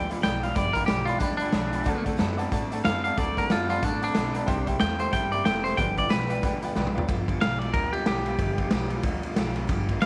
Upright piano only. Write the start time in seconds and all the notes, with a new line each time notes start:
0.10 D5 G5 B5
0.23 D5 G5 B5
0.42 D5 G5 B5
0.56 D5 G5 B5
0.74 D5 G5 B5
0.87 D5 G5 B5
1.08 D5 G5 B5
1.21 D5 G5 B5
1.40 D5 G5 B5
1.53 D5 G5 B5
1.73 D5 G5 B5
1.86 D5 F#5 A5
2.04 D5 F#5 A5
2.18 D5 F#5 A5
2.38 D5 F#5 A5
2.52 D5 F#5 A5
2.71 D5 F#5 A5
2.85 D5 F#5 A5
3.05 D5 F#5 A5
3.17 D5 F#5 A5
3.37 D5 F#5 A5
3.50 D5 F#5 A5
3.69 D5 F#5 A5
3.83 D5 F#5 A5
4.02 D5 F#5 A5
4.14 D5 F#5 A5
4.34 D5 F#5 A5
4.46 C5 E5 G5
4.66 C5 E5 G5
4.80 C5 E5
4.99 C5 E5 G5
5.11 C5 E5 G5
5.32 C5 E5 G5
5.46 C5 E5 G5
5.65 C5 E5 G5
5.78 B4 D5 G5
5.96 B4 D5 G5
6.09 B4 D5 G5
6.29 B4 D5 G5
6.43 B4 D5 G5
6.63 B4 D5 G5
6.76 B4 D5 G5
6.95 B4 D5 G5